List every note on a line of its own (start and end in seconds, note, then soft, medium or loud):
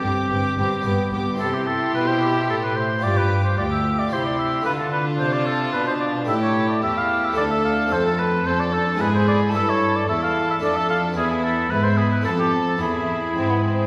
0.00 0.10 G1 medium
0.00 0.27 G2 soft
0.00 0.11 G2 soft
0.00 0.80 C4 soft
0.00 0.30 C4 soft
0.00 0.80 D4 soft
0.00 0.81 G4 soft
0.00 1.10 G4 medium
0.00 0.30 G4 soft
0.00 0.29 D6 soft
0.29 0.37 G1 soft
0.29 0.55 G2 soft
0.29 0.38 G2 medium
0.29 0.57 C4 soft
0.29 0.57 G4 soft
0.29 0.57 D6 soft
0.57 0.65 G1 medium
0.57 0.83 G2 soft
0.57 0.67 G2 medium
0.57 0.85 C4 soft
0.57 0.85 G4 soft
0.57 0.84 D6 soft
0.81 1.36 B3 soft
0.81 1.37 D4 soft
0.81 1.38 G4 soft
0.85 0.93 G1 soft
0.85 1.10 G2 soft
0.85 0.94 G2 medium
0.85 1.11 B3 soft
0.85 1.12 G4 soft
0.85 1.12 D6 soft
1.12 1.20 G1 soft
1.12 1.37 G2 soft
1.12 1.21 G2 medium
1.12 1.39 B3 soft
1.12 1.39 G4 soft
1.12 1.40 D6 soft
1.36 2.97 C4 soft
1.36 2.98 E4 soft
1.36 2.99 G4 soft
1.36 1.55 A4 medium
1.40 1.91 C3 soft
1.40 3.00 E4 medium
1.40 3.00 G4 soft
1.40 3.00 C6 soft
1.54 1.68 G4 medium
1.67 1.94 A4 medium
1.95 2.48 B2 soft
1.95 2.45 B2 soft
1.95 2.09 B4 medium
2.08 2.21 C5 medium
2.22 2.48 G4 medium
2.49 2.99 A2 soft
2.49 3.04 A2 medium
2.49 2.55 A4 medium
2.63 2.78 B4 medium
2.76 3.04 C5 medium
2.99 4.06 D4 soft
2.99 4.07 F4 soft
2.99 4.08 G4 soft
3.03 3.54 G2 soft
3.03 3.58 G2 soft
3.03 3.57 F4 soft
3.03 3.57 G4 soft
3.03 3.19 D5 medium
3.03 3.57 D6 soft
3.17 3.44 B4 medium
3.44 3.57 C5 medium
3.57 4.08 D2 soft
3.57 4.11 D2 soft
3.57 4.11 F4 soft
3.57 4.11 G4 soft
3.57 3.64 D5 medium
3.57 4.11 D6 soft
3.72 4.01 E5 medium
3.99 4.14 D5 medium
4.08 4.62 C4 soft
4.08 4.63 E4 soft
4.08 4.64 G4 soft
4.12 4.65 C3 soft
4.12 4.62 C3 soft
4.12 4.66 E4 soft
4.12 4.65 G4 soft
4.12 4.25 C5 medium
4.12 4.66 C6 soft
4.25 4.38 D5 medium
4.39 4.65 E5 medium
4.62 5.16 A3 soft
4.62 6.23 D4 soft
4.62 6.24 F4 soft
4.62 6.28 F4 medium
4.62 4.72 B4 medium
4.66 5.19 D3 soft
4.66 5.16 D3 soft
4.66 6.26 D4 medium
4.66 6.28 A5 medium
4.79 4.92 A4 soft
4.92 5.05 B4 medium
5.19 5.70 C3 soft
5.19 5.74 C3 medium
5.19 5.34 C5 medium
5.32 5.48 D5 medium
5.46 5.72 A4 medium
5.73 6.25 B2 soft
5.73 6.28 B2 medium
5.73 5.87 B4 medium
5.87 5.94 C5 medium
6.00 6.13 D5 medium
6.25 6.79 A2 soft
6.25 7.31 A3 soft
6.25 7.32 E4 soft
6.25 7.33 G4 soft
6.25 6.35 E5 medium
6.29 6.83 A2 medium
6.29 6.82 E4 medium
6.29 6.82 G4 medium
6.29 6.81 A5 soft
6.42 6.69 C#5 medium
6.69 6.83 D5 medium
6.82 7.33 E2 medium
6.82 7.37 E2 medium
6.82 7.36 E4 medium
6.82 7.36 G4 medium
6.82 6.99 E5 medium
6.82 7.36 A5 medium
6.97 7.26 F5 medium
7.24 7.36 E5 medium
7.32 7.85 A3 soft
7.32 7.88 D4 soft
7.32 7.88 A4 soft
7.36 7.87 D2 soft
7.36 7.90 D2 medium
7.36 7.92 D4 medium
7.36 7.89 A4 medium
7.36 7.43 D5 medium
7.36 7.90 A5 medium
7.51 7.64 E5 medium
7.65 7.94 F5 medium
7.86 8.94 A3 soft
7.86 8.95 C4 soft
7.86 8.96 A4 soft
7.91 8.41 F2 soft
7.91 8.45 F2 medium
7.91 8.45 C4 medium
7.91 8.44 A4 medium
7.91 8.05 C5 medium
7.91 8.45 A5 medium
8.06 8.21 A4 medium
8.19 8.48 B4 medium
8.45 8.96 F2 soft
8.45 8.99 F2 medium
8.45 8.73 C4 medium
8.45 8.99 A4 medium
8.45 8.61 C5 medium
8.45 8.99 A5 medium
8.60 8.75 D5 medium
8.73 9.00 D4 medium
8.73 9.03 A4 medium
8.94 9.50 G#3 soft
8.94 9.50 B3 soft
8.94 9.51 E4 soft
8.99 9.50 G#2 soft
8.99 9.53 G#2 medium
8.99 9.53 E4 medium
8.99 9.52 G#4 soft
8.99 9.53 G#4 medium
8.99 9.14 B4 medium
8.99 9.55 B5 medium
9.15 9.27 C5 medium
9.28 9.40 D5 medium
9.50 10.09 G2 medium
9.50 10.58 A3 soft
9.50 10.58 E4 soft
9.50 10.07 E4 medium
9.50 10.59 A4 soft
9.50 10.07 A4 medium
9.55 10.05 G2 soft
9.55 9.71 E5 medium
9.55 10.08 A5 medium
9.70 9.98 C#5 medium
9.96 10.08 D5 medium
10.09 10.59 E2 soft
10.09 10.62 E2 medium
10.09 10.62 E4 medium
10.09 10.62 A4 medium
10.09 10.22 E5 medium
10.09 10.62 A5 medium
10.23 10.49 F5 medium
10.50 10.56 E5 medium
10.59 11.16 F2 medium
10.59 11.14 A3 soft
10.59 11.14 D4 soft
10.59 11.16 D4 medium
10.59 11.15 A4 soft
10.59 10.78 D5 medium
10.63 11.14 F2 medium
10.63 11.17 A4 medium
10.63 11.16 A5 medium
10.76 10.89 E5 medium
10.90 11.02 F5 medium
11.12 12.21 B3 soft
11.12 12.21 E4 soft
11.17 11.67 E2 soft
11.17 11.72 E2 medium
11.17 11.70 B3 medium
11.17 11.70 E4 medium
11.17 11.30 G#4 medium
11.17 11.71 B5 soft
11.31 11.43 G#4 medium
11.44 11.72 A4 medium
11.71 12.22 G#2 soft
11.71 12.25 G#2 medium
11.71 12.25 B3 medium
11.71 12.26 E4 medium
11.71 11.86 B4 medium
11.71 12.26 B5 medium
11.84 11.99 C5 medium
11.98 12.12 G#4 medium
12.12 12.24 B4 medium
12.22 12.78 A3 soft
12.22 12.78 C4 soft
12.22 12.79 A4 soft
12.22 12.32 A4 medium
12.26 12.77 F2 soft
12.26 12.81 F2 medium
12.26 12.82 C4 soft
12.26 12.83 A4 medium
12.26 12.82 A5 medium
12.39 12.52 G4 medium
12.67 12.80 A4 medium
12.77 13.87 B3 soft
12.77 13.87 E4 soft
12.77 13.87 G#4 medium
12.82 13.36 E2 medium
12.82 13.33 E2 soft
12.82 13.87 E4 medium
12.82 13.32 E4 medium
12.82 13.87 B5 soft
13.37 13.87 G#2 medium
13.37 13.87 G#2 soft
13.37 13.50 C4 medium
13.51 13.65 B3 medium
13.66 13.87 C4 medium